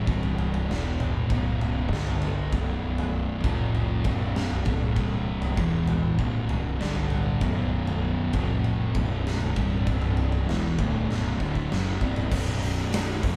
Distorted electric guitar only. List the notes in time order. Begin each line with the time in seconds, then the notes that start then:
Already playing: C2 G2 C3
0.69 E2 B2 E3
1.30 B1 F#2 B2
1.91 G2 D3 G3
2.53 B1 F#2 B2
3.45 F2 C3 F3
4.06 B1 F#2 B2
4.67 C2 G2 C3
5.58 E2 B2 E3
6.19 B1 F#2 B2
6.81 G2 D3 G3
7.42 B1 F#2 B2
8.35 F2 C3 F3
8.96 B1 F#2 B2
9.57 C2 G2 C3
10.48 E2 B2 E3
10.80 D2 A2 D3
11.10 B1 F#2 B2
11.40 D2 A2 D3
11.71 F#2 C#3 F#3
12.01 C2 G2 C3
12.33 B1 F#2 B2
13.24 F2 C3 F3